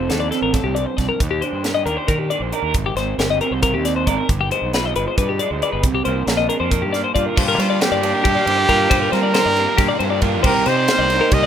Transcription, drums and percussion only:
0.10 snare medium
0.10 closed hi-hat medium
0.32 snare soft
0.32 closed hi-hat medium
0.54 kick loud
0.54 snare soft
0.54 closed hi-hat medium
0.76 closed hi-hat medium
0.98 kick medium
0.98 snare soft
0.98 closed hi-hat medium
1.20 kick loud
1.20 closed hi-hat medium
1.42 closed hi-hat medium
1.64 snare medium
1.64 closed hi-hat medium
1.87 closed hi-hat medium
2.08 kick loud
2.08 closed hi-hat medium
2.31 closed hi-hat medium
2.52 closed hi-hat medium
2.74 kick loud
2.74 closed hi-hat medium
2.97 snare soft
2.97 closed hi-hat medium
3.19 snare loud
3.19 closed hi-hat medium
3.41 closed hi-hat medium
3.63 kick loud
3.63 closed hi-hat medium
3.85 snare soft
3.85 closed hi-hat medium
4.07 kick medium
4.07 closed hi-hat medium
4.29 kick loud
4.29 closed hi-hat medium
4.51 closed hi-hat medium
4.74 snare loud
4.74 closed hi-hat medium
4.96 closed hi-hat medium
5.18 kick loud
5.18 closed hi-hat medium
5.39 closed hi-hat medium
5.62 closed hi-hat medium
5.83 kick loud
5.83 closed hi-hat medium
6.05 closed hi-hat medium
6.27 snare loud
6.27 closed hi-hat medium
6.50 closed hi-hat medium
6.71 kick loud
6.71 closed hi-hat medium
6.94 snare soft
6.94 closed hi-hat medium
7.16 kick medium
7.16 closed hi-hat medium
7.37 kick loud
7.37 crash loud
7.60 snare soft
7.60 ride medium
7.81 snare loud
7.81 ride loud
8.03 ride medium
8.25 kick loud
8.25 ride loud
8.47 ride medium
8.69 kick medium
8.69 ride medium
8.91 kick loud
8.91 ride loud
9.13 snare soft
9.13 ride medium
9.34 snare loud
9.34 ride medium
9.57 ride medium
9.78 kick loud
9.78 snare soft
9.78 ride loud
10.00 ride medium
10.22 kick medium
10.22 ride medium
10.44 kick loud
10.44 crash loud
10.66 snare soft
10.66 ride medium
10.88 snare loud
10.88 ride loud
11.10 snare soft
11.10 ride medium
11.31 kick loud
11.31 ride loud

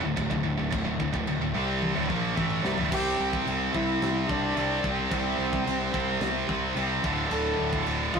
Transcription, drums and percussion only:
0.17 kick medium
0.17 china medium
0.31 kick medium
0.72 kick loud
0.72 china medium
1.00 kick medium
1.14 kick medium
1.27 china medium
1.82 high tom medium
2.10 kick medium
2.37 kick medium
2.37 mid tom medium
2.50 mid tom medium
2.65 snare loud
2.78 floor tom loud
2.92 kick loud
2.92 crash loud
2.92 crash medium
3.33 kick medium
3.47 crash medium
3.75 kick medium
4.02 snare loud
4.02 crash medium
4.29 kick medium
4.57 crash medium
4.84 kick medium
5.12 kick loud
5.12 crash medium
5.53 kick medium
5.67 crash medium
5.94 kick medium
6.21 snare loud
6.21 crash medium
6.49 kick medium
6.77 crash medium
7.04 kick loud
7.31 crash medium
7.73 kick medium
7.86 crash medium
8.14 kick medium

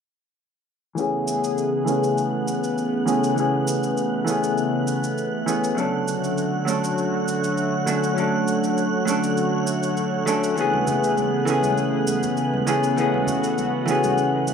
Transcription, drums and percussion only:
0.98 cabasa soft
1.28 cabasa medium
1.44 cabasa soft
1.58 cabasa soft
1.88 cabasa medium
2.04 cabasa soft
2.18 cabasa soft
2.48 cabasa medium
2.64 cabasa soft
2.78 cabasa soft
3.08 cabasa medium
3.24 cabasa soft
3.38 cabasa soft
3.67 cabasa medium
3.83 cabasa soft
3.97 cabasa soft
4.27 cabasa medium
4.43 cabasa soft
4.58 cabasa soft
4.87 cabasa medium
5.04 cabasa soft
5.18 cabasa soft
5.48 cabasa medium
5.64 cabasa soft
5.78 cabasa soft
6.08 cabasa medium
6.24 cabasa soft
6.38 cabasa soft
6.68 cabasa medium
6.84 cabasa soft
6.98 cabasa soft
7.28 cabasa medium
7.44 cabasa soft
7.57 cabasa soft
7.87 cabasa medium
8.04 cabasa soft
8.18 cabasa soft
8.48 cabasa medium
8.64 cabasa soft
8.78 cabasa soft
9.08 cabasa medium
9.23 cabasa soft
9.37 cabasa soft
9.67 cabasa medium
9.83 cabasa soft
9.97 cabasa soft
10.27 cabasa medium
10.43 cabasa soft
10.57 cabasa soft
10.74 high conga medium
10.87 low conga medium
10.87 cabasa medium
11.04 cabasa soft
11.17 high conga medium
11.17 cabasa soft
11.47 cabasa medium
11.63 high conga medium
11.63 cabasa soft
11.77 cabasa soft
12.07 high conga medium
12.07 cabasa medium
12.23 low conga medium
12.23 cabasa soft
12.37 cabasa soft
12.54 high conga medium
12.67 cabasa medium
12.83 cabasa soft
12.98 cabasa soft
13.14 high conga medium
13.27 low conga medium
13.27 cabasa medium
13.44 cabasa soft
13.58 high conga medium
13.58 cabasa soft
13.88 cabasa medium
14.04 high conga medium
14.04 cabasa soft
14.18 cabasa soft
14.47 high conga medium
14.47 cabasa medium

